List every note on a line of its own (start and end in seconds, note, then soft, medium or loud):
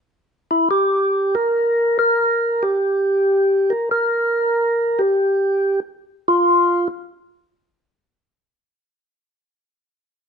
0.51 0.69 E4 medium
0.71 1.35 G4 medium
1.35 1.98 A#4 loud
1.99 2.64 A#4 medium
2.63 3.73 G4 medium
3.70 3.89 A#4 medium
3.91 5.01 A#4 medium
4.99 5.80 G4 medium
6.28 6.88 F4 loud